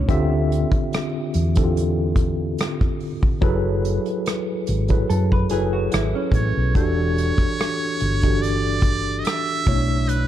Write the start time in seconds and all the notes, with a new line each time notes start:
Already playing: B2 A3 C#4 D4 E4 C#5
0.08 D2 D3 C4 F4 G4 E5, kick, closed hi-hat
0.52 closed hi-hat
0.72 kick, closed hi-hat
0.93 cross-stick, closed hi-hat
1.34 E2, closed hi-hat
1.55 D3 C4 E4 G4 A4, kick, closed hi-hat
1.64 F4
1.77 closed hi-hat
2.16 kick, closed hi-hat
2.58 cross-stick, closed hi-hat
2.81 kick
3.00 open hi-hat
3.23 kick
3.41 F#1 F#3 E4 G#4 A4 B4, kick, closed hi-hat
3.85 closed hi-hat
4.06 closed hi-hat
4.26 cross-stick, closed hi-hat
4.67 G#1, closed hi-hat
4.88 F#3 E4 G#4 A4 B4, kick, closed hi-hat
5.10 F#2 A4, closed hi-hat
5.32 B4, kick
5.49 F#1 F#3 E4 G#4 A4 B4, closed hi-hat
5.73 F#4
5.92 G#1 E4, cross-stick, closed hi-hat
6.15 C#4
6.32 A1 C#5, kick, closed hi-hat
6.57 B1
6.75 E1 E3 D4 F#4 G4 A4 C#5, kick, closed hi-hat
7.18 closed hi-hat
7.38 kick, closed hi-hat
7.59 cross-stick, closed hi-hat
8.00 G1, closed hi-hat
8.22 E3 D4 F#4 G4 A4, kick, closed hi-hat
8.42 D5, closed hi-hat
8.82 kick, closed hi-hat
9.19 D#5
9.24 E5, cross-stick, closed hi-hat
9.66 B1 B2 A3 C#4 E4 C#5, kick, closed hi-hat
9.74 D4
10.09 B4, closed hi-hat